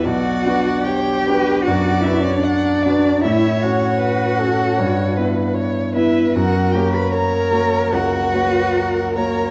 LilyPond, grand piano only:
\new Staff \with { instrumentName = "Grand piano" } { \time 4/4 \key b \minor \tempo 4 = 76 b,,8 <d' fis' b'>4 <d' fis' b'>8 fis,8 <d' fis' b'>4 <d' fis' b'>8 | a,8 <cis' fis' cis''>4 <cis' fis' cis''>8 g,8 <b e' e''>4 <b e' e''>8 | fis,8 <ais fis' cis''>4 <ais fis' cis''>8 cis,8 <ais fis' cis''>4 <ais fis' cis''>8 | }